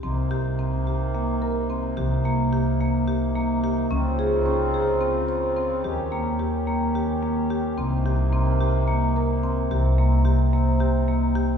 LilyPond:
<<
  \new Staff \with { instrumentName = "Marimba" } { \time 7/8 \key c \phrygian \tempo 4 = 109 c'8 g'8 c'8 g'8 bes8 bes'8 c'8 | g'8 bes8 g'8 bes8 g'8 bes8 g'8 | des'8 aes'8 des'8 aes'8 c'8 c''8 c'8 | g'8 bes8 g'8 bes8 g'8 bes8 g'8 |
c'8 g'8 c'8 g'8 bes8 bes'8 c'8 | g'8 bes8 g'8 bes8 g'8 bes8 g'8 | }
  \new Staff \with { instrumentName = "Harmonium" } { \time 7/8 \key c \phrygian << { <c ees'>2.~ <c ees'>8~ | <c ees'>2.~ <c ees'>8 | <des c' f'>2.~ <des c' f'>8 | <ees g'>2.~ <ees g'>8 |
<c ees'>2.~ <c ees'>8~ | <c ees'>2.~ <c ees'>8 | } \\ { bes2.~ bes8~ | bes2.~ bes8 | ees'2.~ ees'8 | des'2.~ des'8 |
bes2.~ bes8 | c'2.~ c'8 | } >> }
  \new Staff \with { instrumentName = "Upright bass" } { \clef bass \time 7/8 \key c \phrygian c,2.~ c,8 | c,2.~ c,8 | des,2.~ des,8 | ees,2.~ ees,8 |
c,2.~ c,8 | c,2.~ c,8 | }
>>